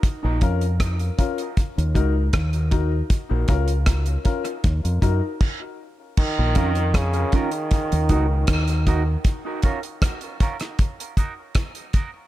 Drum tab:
CC |----------------|------------x---|x---------------|----------------|
HH |x-xxxxxxxxx-xxx-|x-xxxxxxxxx-----|--xxxxxxxxx-xxx-|x-xxxxxxxxx-xxx-|
SD |----r-------r---|----r-----------|----r-------r---|----r--r----r---|
BD |o-o-o-o-o-o-o-o-|o-o-o-o-o-o-o---|o-o-o-o-o-o-o-o-|o-o-o-o-o-o-o-o-|